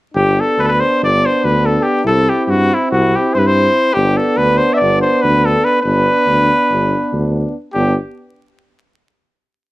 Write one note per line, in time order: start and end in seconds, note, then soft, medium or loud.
0.14 0.38 G1 loud
0.14 2.06 B3 medium
0.14 2.06 D4 medium
0.14 0.42 G4 medium
0.40 0.61 A4 medium
0.58 0.81 D2 medium
0.58 0.64 B4 medium
0.62 0.70 A4 medium
0.68 0.82 B4 medium
0.80 1.01 C5 medium
1.02 1.25 G1 medium
1.02 1.27 D5 medium
1.26 1.47 C5 medium
1.44 1.77 D2 medium
1.44 1.67 B4 medium
1.66 1.81 A4 medium
1.81 2.04 G4 medium
1.81 1.84 A4 medium
2.05 2.28 C2 medium
2.05 3.95 C4 medium
2.05 3.94 E4 medium
2.05 2.31 A4 loud
2.29 2.45 G4 medium
2.45 2.72 G2 medium
2.45 2.51 G4 medium
2.50 2.76 F#4 medium
2.74 2.91 E4 medium
2.92 3.15 C2 loud
2.92 3.17 F#4 medium
3.15 3.36 G4 medium
3.34 3.68 G2 medium
3.34 3.40 C5 medium
3.38 3.48 B4 medium
3.47 3.95 C5 loud
3.93 4.19 G1 medium
3.93 5.81 B3 medium
3.93 5.81 D4 medium
3.93 4.18 G4 medium
4.17 4.39 A4 medium
4.37 4.61 D2 medium
4.37 4.59 B4 medium
4.58 4.75 C5 medium
4.73 5.01 D5 medium
4.73 4.78 E5 medium
4.81 5.05 G1 medium
5.01 5.23 C5 medium
5.22 5.57 D2 medium
5.22 5.47 B4 medium
5.46 5.66 A4 medium
5.65 5.81 B4 medium
5.82 6.08 G1 medium
5.82 7.55 B3 medium
5.82 7.55 D4 medium
5.82 7.30 B4 loud
6.27 6.51 D2 medium
6.71 6.95 G1 medium
7.13 7.46 D2 medium
7.73 7.96 G1 medium
7.73 7.96 B3 medium
7.73 7.96 D4 medium
7.73 7.95 G4 medium